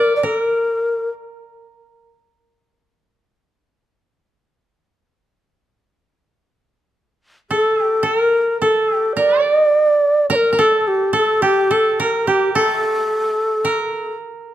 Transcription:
Already playing: shakuhachi A#4, koto A#4 D5
0.16 shakuhachi D5
0.23 shakuhachi A4, koto A#4
0.36 shakuhachi A#4
7.50 shakuhachi A4, koto A4
7.84 koto G4
8.03 koto A4, shakuhachi A4
8.16 koto A#4, shakuhachi A#4
8.62 koto A4, shakuhachi A4
8.95 koto G4
9.16 koto A#4, shakuhachi D5
9.44 koto D5
10.30 koto A#4, shakuhachi D5
10.35 shakuhachi A#4
10.53 koto A#4
10.59 koto A4, shakuhachi A4
10.81 shakuhachi A4
10.88 shakuhachi G4
11.13 koto A4, shakuhachi A4
11.42 koto G4, shakuhachi G4
11.71 koto A4, shakuhachi A4
12.00 koto A#4, shakuhachi A#4
12.27 shakuhachi G4, koto G4
12.55 shakuhachi A4, koto A4
13.65 koto A#4

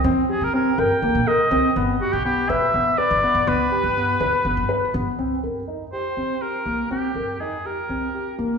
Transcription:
0.04 upright bass F2, grand piano C4
0.29 grand piano G4, oboe G#4
0.41 upright bass C3, oboe A#4
0.54 grand piano C4, oboe A#4
0.78 upright bass G2, grand piano A#4, oboe G5
1.02 upright bass C2, grand piano A#3
1.15 upright bass C3
1.27 grand piano A#4, oboe D#5
1.51 upright bass C2, grand piano C4
1.76 upright bass G1, grand piano B3
2.00 oboe F#4, grand piano G4
2.13 upright bass B1, oboe G4
2.25 grand piano B3, oboe G4
2.49 upright bass E1, grand piano B4, oboe E5
2.74 upright bass G1, grand piano B3
2.98 grand piano B4, oboe D5
3.11 upright bass G1
3.23 grand piano B3
3.35 upright bass G1
3.47 upright bass C#2, grand piano B3, oboe B4
3.71 grand piano G4
3.84 upright bass G2
3.97 grand piano B3
4.20 upright bass D2, grand piano B4
4.45 upright bass G1, grand piano B3
4.57 upright bass G2
4.69 grand piano B4
4.94 upright bass G1, grand piano B3
5.19 upright bass C2, grand piano C4
5.43 upright bass G2, grand piano A#4
5.68 upright bass F2, grand piano D#4
5.93 grand piano G4, oboe C5
6.17 upright bass C2, grand piano C4
6.42 grand piano G4, oboe A#4
6.66 upright bass C2, grand piano A#3
6.91 upright bass C2, grand piano C4, oboe G4
7.15 upright bass G2, grand piano A#4
7.40 upright bass F2, grand piano D#4, oboe G#4
7.65 grand piano G4, oboe A#4
7.89 upright bass C2, grand piano C4
8.14 grand piano G4
8.38 upright bass C2, grand piano A#3

